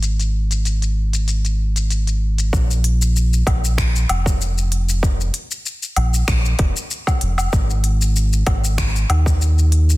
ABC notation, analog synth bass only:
X:1
M:4/4
L:1/8
Q:"Swing 16ths" 1/4=96
K:none
V:1 name="Analog synth bass" clef=bass
_A,,,8 | _B,,,3 B,,,2 F,,,3- | F,,, z2 _B,,, B,,, F,,, z F,,, | _A,,,3 A,,,2 _E,,3 |]